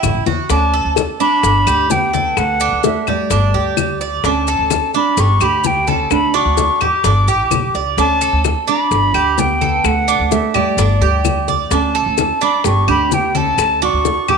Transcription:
Already playing: E4 G5
0.03 A1, high bongo, high conga, claves, maracas
0.14 A1
0.26 E2 F#4, low bongo, high conga, maracas
0.50 D2 C#4 D4 A5, high bongo, high conga, maracas
0.74 A4, high conga
0.85 D2
0.96 high bongo, high conga, claves, maracas
1.20 D4 B5, high bongo, high conga, maracas
1.43 G1, high bongo, high conga, maracas
1.67 D2 G4, high bongo, high conga, claves, maracas
1.90 B3 G5, high bongo, low bongo, high conga, maracas
2.13 A4, high bongo, high conga, maracas
2.37 D2 A3 F#5, high bongo, high conga, claves, maracas
2.60 D4, high conga, maracas
2.72 D2
2.83 A3 E5, high bongo, high conga, maracas
3.07 G3 G4 D5, high bongo, high conga, low conga, claves, maracas
3.30 G1 D4, high bongo, high conga, low conga, maracas
3.54 D2 G4, high bongo, high conga
3.77 high bongo, low bongo, high conga, claves, maracas
4.00 D5, high bongo, maracas
4.24 D2 C#4 D4 A5, high bongo, high conga, maracas
4.47 A4, high conga, maracas
4.59 D2
4.70 high bongo, high conga, claves, maracas
4.94 D4 B5, high bongo, high conga, maracas
5.17 G1 G4 C#6, high bongo, high conga, maracas
5.40 D2 D4 G4 B5, high bongo, high conga, claves, maracas
5.64 B3 G5, high bongo, low bongo, high conga, maracas
5.87 C#4 A4 A5, high bongo, high conga, maracas
6.10 D2 D4 B5, high bongo, high conga, claves, maracas
6.34 D4 F#4 C#6, high conga
6.45 D2
6.57 high bongo, high conga, maracas
6.81 G4 D6, high bongo, high conga, low conga, claves, maracas
7.04 G1 D4, high bongo, high conga, low conga, maracas
7.27 A1 G4, high bongo, high conga, maracas
7.51 B1, high bongo, low bongo, high conga, claves, maracas
7.74 C#2 D5, high bongo, maracas
7.97 D2 C#4 D4 A5, high bongo, high conga, maracas
8.21 A4, high conga, maracas
8.32 D2
8.44 high bongo, high conga, claves, maracas
8.68 D4 B5, high bongo, high conga, maracas
8.91 G1, high bongo, high conga, maracas
9.14 D2 G4, high bongo, high conga, claves
9.38 B3 G5, high bongo, low bongo, high conga, maracas
9.61 A4, high bongo, high conga, maracas
9.84 D2 A3 F#5, high bongo, high conga, claves, maracas
10.08 D4, high conga, maracas
10.19 D2
10.31 A3 E5, high bongo, high conga, maracas
10.54 G3 G4 D5, high bongo, high conga, low conga, claves, maracas
10.77 G1 D4, high bongo, high conga, low conga, maracas
11.01 D2 G4, high bongo, high conga
11.25 high bongo, low bongo, high conga, claves, maracas
11.48 D5, high bongo, high conga, maracas
11.71 D2 C#4 D4 A5, high bongo, high conga, maracas
11.95 A4, high conga
12.06 D2
12.18 high bongo, high conga, claves, maracas
12.41 D4 B5, high bongo, high conga, maracas
12.64 G1 G4 C#6, high bongo, high conga, maracas
12.88 D2 D4 G4 B5, high bongo, high conga, claves
13.12 B3 G5, high bongo, low bongo, high conga, maracas
13.35 C#4 A4 A5, high bongo, high conga, maracas
13.58 D2, high bongo, high conga, claves, maracas
13.82 D4 F#4 C#6, high conga
13.93 D2
14.05 high bongo, high conga, maracas
14.28 G4 D6, high bongo, high conga, low conga, claves, maracas

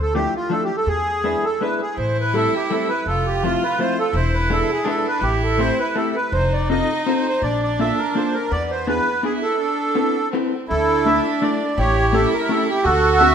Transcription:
Already playing: D2
0.02 A4
0.14 F3 A3 D4 E4 G4
0.36 F4
0.50 F3 A3 D4 E4 A4
0.64 G4
0.77 A4
0.86 E2 G#4
1.24 G#3 B3 D4 E4
1.45 A4
1.61 G#3 B3 D4 E4 B4
1.82 G#4
1.95 A1 E4 C5
2.20 B4
2.34 G3 A3 C4 E4 A4
2.55 G4
2.70 G3 A3 C4 E4 A4
2.89 B4
3.06 F1 F4 A4
3.26 G4
3.44 F3 A3 C4 E4 F4
3.63 B4
3.79 F3 A3 C4 E4 C5
3.99 A4
4.13 E1 E4 C5
4.34 B4
4.50 G#3 B3 D4 E4 A4
4.71 G#4
4.84 G#3 B3 D4 E4 A4
5.08 B4
5.21 A1 E4 G4
5.43 A4
5.58 A3 C4 E4 G4 C5
5.79 B4
5.95 A3 C4 E4 G4 A4
6.15 B4
6.32 F1 D#4 C5
6.53 D5
6.70 C4 D#4 F4 A4 D#5
7.06 C4 D#4 F4 A4 C5
7.15 C5
7.28 C5
7.42 A#1 D4 D5
7.63 D5
7.79 A#3 D4 F4 A4 E5
7.98 A#4
8.15 A#3 D4 F4 A4 C5
8.34 A#4
8.51 E2 B3 D5
8.71 C5
8.87 B3 D4 E4 G#4 B4
9.23 B3 D4 E4 G#4
9.42 A4
9.59 D4
9.95 B3 C4 E4 A4
10.31 B3 C4 E4 A4
10.68 D2 D4 E4 A4
11.06 A3 D4 E4 A4 E5
11.42 A3 D4 E4 A4 D5
11.77 A1 E4 G4 C#5
12.13 A3 C#4 E4 G4 A4
12.34 A#4
12.49 A3 C#4 E4 G4 A4
12.69 G4
12.84 D2 F#4 A4
13.20 C4 D4 F#4 A4 E5

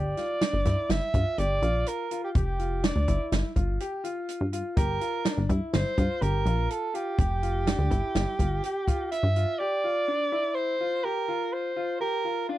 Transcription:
Already playing: G1 G4 D5
0.17 F4, snare, closed hi-hat
0.41 D4, snare, closed hi-hat
0.53 G1
0.65 G2 E4, kick, snare, closed hi-hat
0.90 G1 E5, snare, closed hi-hat
1.14 G2 F4, kick, closed hi-hat
1.38 G1 G4 D5, closed hi-hat
1.62 A#1 F4, closed hi-hat
1.86 A#4, closed hi-hat
2.11 F4, closed hi-hat
2.24 G4
2.35 F1 G4, kick, closed hi-hat
2.59 F4, closed hi-hat
2.84 D4 D5, snare, closed hi-hat
2.96 D2
3.08 G1 E4, kick, closed hi-hat
3.32 G1, snare, closed hi-hat
3.56 G1 F4, kick, closed hi-hat
3.80 G4, closed hi-hat
4.04 F4, closed hi-hat
4.29 closed hi-hat
4.41 G2
4.53 F4, closed hi-hat
4.77 G1 G4 A#4, kick, closed hi-hat
5.01 F4, closed hi-hat
5.25 D4, snare, closed hi-hat
5.38 G1
5.49 G2 E4, kick, closed hi-hat
5.73 G1 C5, snare, closed hi-hat
5.98 G2 F4, kick, closed hi-hat
6.22 G1 G4 A#4, closed hi-hat
6.46 A#1 F4, closed hi-hat
6.70 A4, closed hi-hat
6.94 F4 G4, closed hi-hat
7.19 F1 G4, kick, closed hi-hat
7.42 F4, closed hi-hat
7.66 D4, snare, closed hi-hat
7.79 D2
7.90 G1 E4, kick, closed hi-hat
8.15 G1, snare, closed hi-hat
8.39 G1 F4, kick, closed hi-hat
8.63 G4, closed hi-hat
8.87 F4, kick, closed hi-hat
9.11 E5, closed hi-hat
9.23 G2
9.36 F4, closed hi-hat
9.59 G4 D5
9.84 F4
10.08 D4
10.32 E4
10.54 C5
10.80 F4
11.04 G4 A#4
11.28 F4
11.53 C5
11.76 F4
12.00 G4 A#4
12.24 F4
12.49 D4 F4

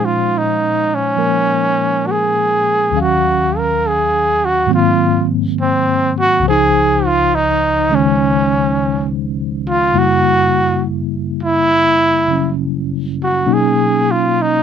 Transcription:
Already playing: A#2 F3 G#3 C#4 D#4 C5 F5
0.05 F4
0.38 D#4
0.95 C#4
1.16 F3 A#3 A#4
2.07 F#4
2.11 G#4
2.91 D#2 D#3 F#3
2.96 C#4 F5
3.01 F#4
3.58 A#4
3.88 G#4
4.45 F#4
4.66 G#2 D#3 F#3 A#3
4.71 C4 F4
5.61 C4
6.20 F#4
6.39 C#2 C#3
6.45 F3 G#4 C5
6.51 D#4
7.06 F4
7.35 D#4
7.89 C#3 D#3 G#3 C#4
7.95 C#4
9.68 F4
9.94 F#2 C#3 G3 A#3 E4
9.98 F#4
11.43 E4
12.28 C#3 F#3 C#4
13.23 F#4
13.46 B2 F#3 A#3 C#4 D#4
13.53 G#4
14.11 F4
14.42 D#4

